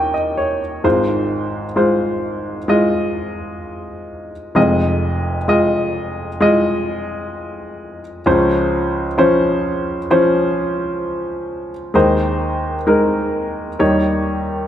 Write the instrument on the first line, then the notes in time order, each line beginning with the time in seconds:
grand piano
Already playing: D#2 D#3 C#4 G4 D#5 G5
0.14 D#5
0.37 C#5
0.84 G#1 G#2 G#3 F4 C5
1.76 G#3 F4 C5
2.68 G#3 F4 D#5
4.55 F1 F2 G#3 F4 D#5
5.48 G#3 F4 D#5
6.40 G#3 F4 D#5
8.26 C#2 C#3 F3 C#4 C5
9.18 F3 C#4 C5
10.11 F3 C#4 C5
11.94 D#2 D#3 G#3 D#4 C5
12.87 G#3 D#4 A#4
13.79 D#2 D#3 G3 D#4 C#5